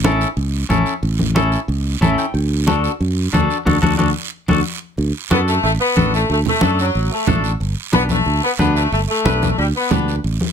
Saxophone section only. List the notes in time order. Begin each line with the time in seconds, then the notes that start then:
5.31 B3
5.47 A3
5.63 A3
5.79 B3
6.14 A3
6.30 A3
6.47 A3
6.79 F#3
7.11 A3
7.94 B3
8.10 A3
8.43 B3
8.58 B3
8.75 A3
8.91 A3
9.08 A3
9.57 G3
9.74 B3